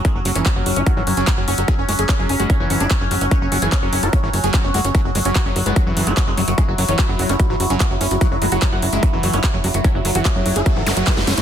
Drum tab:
HH |x-oxx-oxx-oxx-ox|x-oxx-oxx-oxx-ox|x-oxx-oxx-oxx-ox|x-oxx-oxx-oxx-ox|
CP |----x-------x---|----x-------x---|----x-------x---|----x-------x---|
SD |----------------|----------------|----------------|----------------|
BD |o---o---o---o---|o---o---o---o---|o---o---o---o---|o---o---o---o---|

HH |x-oxx-oxx-oxx-ox|x-oxx-oxx-oxx-ox|x-oxx-oxx-oxx-ox|
CP |----x-------x---|----x-------x---|----x-------x---|
SD |----------------|----------------|----------o-oooo|
BD |o---o---o---o---|o---o---o---o---|o---o---o---o---|